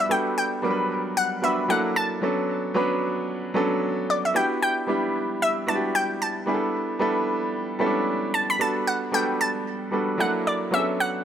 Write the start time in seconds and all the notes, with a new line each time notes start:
Already playing: G3 B3 D4 E4 F#4 G4
0.09 G3 B3 D4 F#4 A4 G5
0.38 G5
0.62 F#3 G3 B3 D4 A#4
0.71 B4
1.17 F#5
1.42 G3 B3 D4 F#4 B4 E5
1.68 F#3 A#3 D4 E4 A4 F#5
1.96 A5
2.21 F#3 B3 C#4 D4 A4
2.74 F#3 B3 C#4 D4 B4
3.54 F#3 B3 C#4 D4 A4
4.10 D5
4.25 E5
4.34 B3 D4 E4 F#4 G4 G5
4.62 G5
4.87 G3 B3 D4 E4 G4
5.42 E5
5.67 B3 D4 E4 F#4 A5
5.75 G4
5.95 G5
6.22 A5
6.46 G3 B3 D4 E4 G#4
6.54 A4
6.99 G3 B3 D4 E4 A4
7.79 G3 B3 C#4 E4 A4
7.86 D4
8.34 A5
8.50 B5
8.59 G3 B3 D4 F#4 A4 A5
8.87 F#5
9.12 G3 B3 D4 F#4 A4 G5
9.41 A5
9.91 G3 B3 D4 F#4 A4
10.18 F#3 A#3 D4 E4 A4 F#5
10.47 D5
10.71 F#3 B3 C#4 D4 G#4 E5
10.79 A4
11.00 F#5